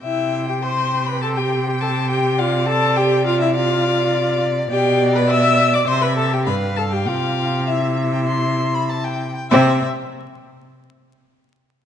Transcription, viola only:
\new Staff \with { instrumentName = "Viola" } { \time 4/4 \key c \major \tempo 4 = 101 e'8. g'16 c''8. b'16 a'16 g'8 g'16 a'8 g'8 | f'8 a'8 g'8 f'16 e'16 f'4. r8 | g'8. b'16 e''8. d''16 c''16 b'16 a'16 g'16 b'8 a'16 g'16 | f'4 e'2~ e'8 r8 |
c'8 r2. r8 | }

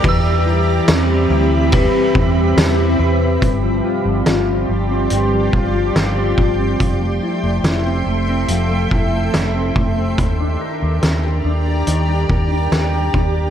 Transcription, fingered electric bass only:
\new Staff \with { instrumentName = "Fingered electric bass" } { \clef bass \time 4/4 \key g \mixolydian \tempo 4 = 71 e,4 e,8 d,8. r16 e,8 e,8 e,8 | g,,8 r16 g,,16 g,,8 g,,8 g,,8 g,,8 g,,8 g,,8 | f,,8 r16 f,,16 f,,8 f,,8 f,,8 f,,8 f,,8 f,,8 | ees,8 r16 ees,16 ees,8 ees,8 ees,8 ees,8 ees,8 ees,8 | }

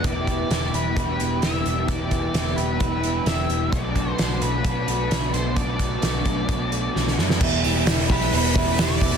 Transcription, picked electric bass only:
\new Staff \with { instrumentName = "Picked electric bass" } { \clef bass \time 4/4 \key e \minor \tempo 4 = 130 e,,4 e,,8 e,,8 e,,8 e,,8 e,,8 e,,8 | e,,4 e,,8 e,,8 e,,4 e,,8 e,,8 | b,,4 b,,8 b,,8 b,,8 b,,8 b,,8 b,,8 | b,,4 b,,8 b,,8 b,,4 b,,8 fis,8 |
e,,8 e,,8 e,,8 b,,8 e,,8 e,,8 e,,8 e,,8 | }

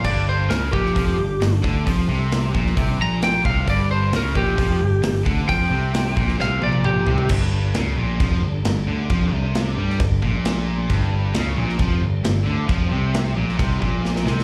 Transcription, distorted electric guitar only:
\new Staff \with { instrumentName = "Distorted electric guitar" } { \clef bass \time 4/4 \key g \minor \tempo 4 = 133 g,4 cis8 bes,8 f8 g,8 g,8 d8 | f8 c4 bes,8 c8 bes,4 c8 | g,4 cis8 bes,8 f8 g,8 g,8 d8 | f8 c4 bes,8 c8 bes,4 c8 |
g,4 cis8 bes,8 f8 g,8 g,8 d8 | f8 c4 g8 g,8 bes,4. | g,4 cis8 bes,8 f8 g,8 g,8 d8 | f8 c4 bes,8 c8 bes,4 c8 | }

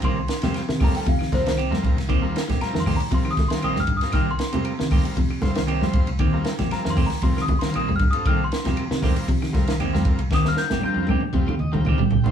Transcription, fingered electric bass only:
\new Staff \with { instrumentName = "Fingered electric bass" } { \clef bass \time 4/4 \key c \minor \tempo 4 = 117 c,8 r16 c8 c8 r16 c8 c,8. f,8 c,16 | ees,8 r16 bes,,16 r16 f,8 r16 c8 r8 bes,,8 g,8 | c,8 r16 c8 c8 r16 c8 c,8. f,8 c,16 | ees,8 r16 bes,,16 r16 f,8 r16 c8 r8 bes,,8 g,8 |
c,8 r16 c8 c8 r16 c8 c,8. f,8 c,16 | ees,8 r16 bes,,16 r16 f,8 r16 c8 ees,8 d,8 c,8 | }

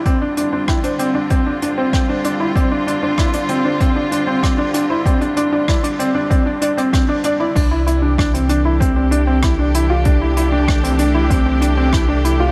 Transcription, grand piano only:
\new Staff \with { instrumentName = "Grand piano" } { \time 4/4 \key c \mixolydian \tempo 4 = 96 c'16 d'16 d'16 d'16 e'16 d'16 c'16 d'16 c'16 d'16 d'16 c'16 c'16 d'16 d'16 e'16 | c'16 d'16 d'16 d'16 e'16 d'16 c'16 d'16 c'16 d'16 d'16 c'16 c'16 d'16 d'16 e'16 | c'16 d'16 d'16 d'16 e'16 d'16 c'16 d'16 c'16 d'16 d'16 c'16 c'16 d'16 d'16 e'16 | d'16 e'16 e'16 d'16 d'16 c'16 d'16 e'16 c'16 c'16 d'16 c'16 e'16 d'16 e'16 f'16 |
d'16 e'16 e'16 d'16 d'16 c'16 d'16 e'16 c'16 c'16 d'16 c'16 e'16 d'16 e'16 f'16 | }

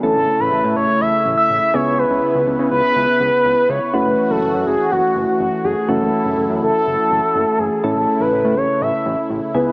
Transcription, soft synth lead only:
\new Staff \with { instrumentName = "Soft synth lead" } { \time 4/4 \key a \major \tempo 4 = 123 a'8. b'8. cis''8 e''8. e''8. cis''8 | b'4. b'2 cis''8 | b'8. a'8. gis'8 fis'8. fis'8. gis'8 | a'4. a'2 gis'8 |
a'8. b'8. cis''8 e''8. r8. b'8 | }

